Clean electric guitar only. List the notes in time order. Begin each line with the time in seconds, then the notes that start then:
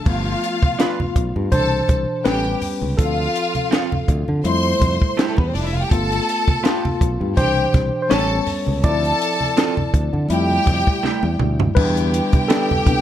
0.79 D4 F4 B4
2.25 C#4 G4 A4
3.71 C4 F4 A4
5.17 A3 E4 G4
6.63 B3 F4 G4
8.11 C#4 G4 A4
9.57 C4 F4 A4
11.03 A3 E4 G4
12.49 B3 D4 G4